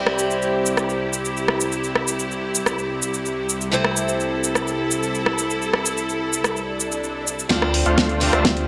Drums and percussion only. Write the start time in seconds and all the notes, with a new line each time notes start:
0.07 cross-stick
0.19 shaker
0.31 shaker
0.42 shaker
0.66 shaker
0.77 cross-stick, shaker
0.89 shaker
1.13 shaker
1.25 shaker
1.37 shaker
1.48 cross-stick
1.60 shaker
1.72 shaker
1.84 shaker
1.95 cross-stick
2.08 shaker
2.19 shaker
2.31 shaker
2.55 shaker
2.66 cross-stick, shaker
2.79 shaker
3.02 shaker
3.14 shaker
3.26 shaker
3.49 shaker
3.61 shaker
3.73 shaker
3.84 cross-stick
3.97 shaker
4.08 shaker
4.20 shaker
4.44 shaker
4.55 cross-stick, shaker
4.68 shaker
4.91 shaker
5.03 shaker
5.15 shaker
5.26 cross-stick
5.38 shaker
5.50 shaker
5.62 shaker
5.73 cross-stick
5.86 shaker
5.98 shaker
6.09 shaker
6.33 shaker
6.44 cross-stick, shaker
6.56 shaker
6.80 shaker
6.92 shaker
7.04 shaker
7.27 shaker
7.39 shaker
7.50 kick, snare, closed hi-hat
7.62 cross-stick
7.74 open hi-hat
7.86 closed hi-hat
7.98 kick, snare, closed hi-hat
8.09 closed hi-hat
8.21 open hi-hat
8.33 cross-stick, closed hi-hat
8.45 kick, snare, closed hi-hat
8.57 closed hi-hat